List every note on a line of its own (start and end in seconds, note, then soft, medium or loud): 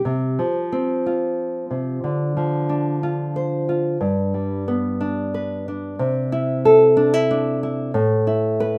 0.05 0.38 C3 medium
0.39 2.35 F3 soft
0.72 2.00 C4 medium
1.06 2.00 F4 soft
1.71 2.03 C3 soft
2.04 3.97 D3 soft
2.37 4.01 F3 soft
2.69 4.67 D4 soft
3.03 3.68 F4 medium
3.36 3.97 C5 soft
3.69 3.97 F4 soft
4.01 5.97 G2 medium
4.34 5.94 G3 soft
4.68 5.94 B3 soft
5.01 5.65 D4 soft
5.34 5.95 B4 soft
5.68 6.32 D4 soft
5.99 7.94 C3 medium
6.32 6.96 E4 medium
6.65 7.91 A4 medium
6.97 7.14 D4 medium
7.14 7.62 E4 medium
7.31 7.91 D4 medium
7.63 7.91 E4 medium
7.94 8.78 A2 medium
8.27 8.78 E4 medium
8.60 8.78 B4 medium